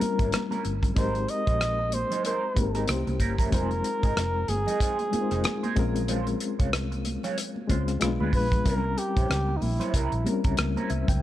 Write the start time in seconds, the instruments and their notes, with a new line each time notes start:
Already playing: reed electric piano A#4, flugelhorn A#4
0.00 reed electric piano G3 C4 C#4 E4 A#4, muted clean electric guitar stroke, muted fingered electric bass stroke, closed hi-hat, high conga
0.18 fingered electric bass G#1, clean electric guitar G3 C#4 E4 A#4, kick, closed hi-hat
0.32 muted clean electric guitar stroke, cross-stick, closed hi-hat, muted conga, high conga
0.51 clean electric guitar G3 C#4 E4 A#4, closed hi-hat, high conga
0.64 fingered electric bass G1, muted clean electric guitar stroke, closed hi-hat
0.83 muted clean electric guitar stroke, kick, closed hi-hat, low conga
0.94 fingered electric bass G#1, clean electric guitar G3 C4 D#4 A#4, reed electric piano G#3 C4 D#4 G4 A#4, flugelhorn C5, kick, closed hi-hat, muted conga, low conga
1.15 muted clean electric guitar stroke, closed hi-hat
1.28 flugelhorn D#5, muted clean electric guitar stroke, closed hi-hat
1.46 fingered electric bass A#1, clean electric guitar G3 C4 D#4 C5, kick, closed hi-hat
1.60 muted clean electric guitar stroke, cross-stick, closed hi-hat, muted conga
1.79 muted clean electric guitar stroke, muted conga
1.92 flugelhorn C5, closed hi-hat, high conga
2.10 clean electric guitar G3 C4 D#4 C5, closed hi-hat, low conga
2.24 clean electric guitar G3 C4 D#4 A#4, flugelhorn C5, closed hi-hat, muted conga
2.54 fingered electric bass G#1, reed electric piano G#3 C4 D#4 G4 A#4, muted clean electric guitar stroke, kick, closed hi-hat, high conga
2.75 clean electric guitar G3 C4 D#4 A#4, cross-stick, closed hi-hat
2.86 fingered electric bass C2, reed electric piano A#3 C#4 E4 G4 C5, cross-stick, closed hi-hat, high conga
3.07 fingered electric bass C2, muted clean electric guitar stroke, closed hi-hat, muted conga, high conga
3.20 fingered electric bass G1, clean electric guitar G3 C#4 E4 A#4, kick, closed hi-hat
3.38 clean electric guitar G3 C#4 E4 A#4, kick, closed hi-hat, low conga
3.50 fingered electric bass F1, reed electric piano G3 C4 D#4 F4 C5, clean electric guitar C4 D#4 G#4 C5, flugelhorn A#4, kick, closed hi-hat, muted conga, low conga
3.57 reed electric piano G#3
3.71 muted clean electric guitar stroke, closed hi-hat, muted conga
3.84 muted clean electric guitar stroke, closed hi-hat
4.03 fingered electric bass G#1, clean electric guitar C4 D#4 G#4 D#5, kick, closed hi-hat
4.16 fingered electric bass F1, cross-stick, closed hi-hat, muted conga
4.36 muted clean electric guitar stroke
4.48 fingered electric bass G1, flugelhorn G#4, closed hi-hat, high conga
4.66 clean electric guitar C4 D#4 G#4 D#5, closed hi-hat, low conga
4.80 clean electric guitar C4 D#4 G#4 C5, kick, closed hi-hat
4.99 closed hi-hat, muted conga
5.11 reed electric piano G#3 C4 D#4 F4 A#4, muted clean electric guitar stroke, muted fingered electric bass stroke, closed hi-hat, high conga
5.21 reed electric piano C5
5.31 fingered electric bass F1, clean electric guitar C4 D#4 G#4 C5, cross-stick, closed hi-hat
5.44 muted clean electric guitar stroke, cross-stick, closed hi-hat, high conga
5.63 clean electric guitar C4 D#4 G#4 C5, closed hi-hat, muted conga, high conga
5.76 fingered electric bass A#1, reed electric piano G#3 C4 C#4 F4 A#4, muted clean electric guitar stroke, kick, closed hi-hat
5.95 muted clean electric guitar stroke, closed hi-hat, low conga
6.08 clean electric guitar G#3 C#4 F4 C5, closed hi-hat, muted conga, low conga
6.27 muted clean electric guitar stroke, closed hi-hat, muted conga
6.40 muted clean electric guitar stroke, closed hi-hat
6.59 fingered electric bass C2, clean electric guitar G#3 C#4 F4 C#5, kick, closed hi-hat
6.73 muted clean electric guitar stroke, cross-stick, closed hi-hat
6.92 muted clean electric guitar stroke, closed hi-hat, muted conga
7.05 closed hi-hat, high conga
7.23 clean electric guitar G#3 C#4 F4 C#5, cross-stick, closed hi-hat, low conga
7.37 muted clean electric guitar stroke, closed hi-hat
7.56 muted conga
7.68 fingered electric bass C#2, reed electric piano G#3 C4 C#4 F4 C5, clean electric guitar G#3 C#4 F4 C5, kick, closed hi-hat, high conga
7.88 muted clean electric guitar stroke, cross-stick, closed hi-hat
8.00 fingered electric bass B1, reed electric piano G#3 B3 C#4 F4 B4, muted clean electric guitar stroke, cross-stick, closed hi-hat, muted conga, high conga
8.08 reed electric piano D4
8.19 fingered electric bass D2, clean electric guitar G#3 D4 F4 B4, muted conga, high conga
8.33 fingered electric bass A#1, flugelhorn B4, kick, open hi-hat
8.52 muted clean electric guitar stroke, kick, closed hi-hat, low conga
8.64 fingered electric bass C2, reed electric piano G3 C4 C#4 E4 A#4, clean electric guitar G3 C#4 E4 A#4, flugelhorn A#4, kick, closed hi-hat, muted conga, low conga
8.84 muted clean electric guitar stroke, muted conga
8.98 flugelhorn G4, muted clean electric guitar stroke, closed hi-hat
9.17 fingered electric bass A#1, clean electric guitar G3 C#4 E4 C5, kick, closed hi-hat
9.28 fingered electric bass C#2, muted clean electric guitar stroke, cross-stick, closed hi-hat, muted conga
9.47 muted clean electric guitar stroke, muted conga
9.57 flugelhorn D#4
9.61 fingered electric bass A#1, flugelhorn E4, open hi-hat, high conga
9.79 clean electric guitar G3 C#4 E4 C5, cross-stick, closed hi-hat, low conga
9.94 fingered electric bass C2, clean electric guitar G3 C#4 E4 A#4, kick, closed hi-hat
10.12 fingered electric bass A#1, closed hi-hat
10.24 reed electric piano G3 C4 C#4 E4 A#4, muted clean electric guitar stroke, closed hi-hat, high conga
10.44 fingered electric bass C#2, clean electric guitar G3 C#4 E4 A#4, kick, closed hi-hat
10.57 fingered electric bass C#2, muted clean electric guitar stroke, cross-stick, closed hi-hat, high conga
10.76 clean electric guitar G3 C#4 E4 A#4, reed electric piano C5, closed hi-hat, muted conga, high conga
10.90 fingered electric bass C2, reed electric piano E5, muted clean electric guitar stroke, closed hi-hat
11.08 fingered electric bass C#2, reed electric piano G5, muted clean electric guitar stroke, kick, closed hi-hat, low conga